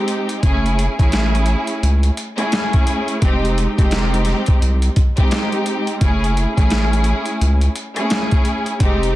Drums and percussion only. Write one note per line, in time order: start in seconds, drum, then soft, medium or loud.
0.08 closed hi-hat medium
0.29 closed hi-hat medium
0.43 kick loud
0.43 closed hi-hat loud
0.66 closed hi-hat medium
0.79 closed hi-hat medium
0.99 kick medium
0.99 closed hi-hat medium
1.12 snare loud
1.12 snare medium
1.12 closed hi-hat medium
1.35 closed hi-hat soft
1.46 closed hi-hat medium
1.67 closed hi-hat medium
1.83 closed hi-hat loud
2.03 closed hi-hat medium
2.17 closed hi-hat medium
2.38 closed hi-hat medium
2.52 snare loud
2.52 snare medium
2.52 closed hi-hat medium
2.73 kick loud
2.73 closed hi-hat soft
2.87 closed hi-hat medium
3.08 closed hi-hat medium
3.22 kick loud
3.22 closed hi-hat loud
3.45 closed hi-hat medium
3.58 closed hi-hat medium
3.78 kick medium
3.78 closed hi-hat medium
3.91 snare loud
3.91 snare medium
3.91 closed hi-hat medium
4.14 closed hi-hat soft
4.25 snare soft
4.25 closed hi-hat medium
4.46 kick medium
4.46 closed hi-hat medium
4.62 closed hi-hat loud
4.82 closed hi-hat medium
4.96 kick medium
4.96 closed hi-hat medium
5.17 kick medium
5.17 closed hi-hat medium
5.31 snare loud
5.31 snare medium
5.31 closed hi-hat medium
5.52 closed hi-hat soft
5.66 closed hi-hat medium
5.87 closed hi-hat medium
6.01 kick loud
6.01 closed hi-hat loud
6.24 closed hi-hat medium
6.37 closed hi-hat medium
6.57 kick medium
6.57 closed hi-hat medium
6.70 snare loud
6.70 snare medium
6.70 closed hi-hat medium
6.93 closed hi-hat soft
7.04 closed hi-hat medium
7.25 closed hi-hat medium
7.41 closed hi-hat loud
7.61 closed hi-hat medium
7.75 closed hi-hat medium
7.96 closed hi-hat medium
8.10 snare loud
8.10 snare medium
8.10 closed hi-hat medium
8.31 kick medium
8.31 closed hi-hat soft
8.45 closed hi-hat medium
8.66 closed hi-hat soft
8.80 kick loud
8.80 closed hi-hat loud
9.03 closed hi-hat medium